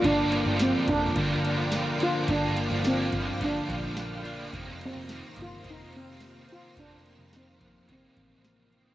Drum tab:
HH |xxxxxxxx|xxxxxxxx|xxxxxxxx|xxxxxxxx|
TB |--x---x-|--x---x-|--x---x-|--x---x-|
SD |--o---o-|--o---o-|--o---o-|--o---o-|
BD |o--oo---|o--ooo--|o--oo---|o--ooo--|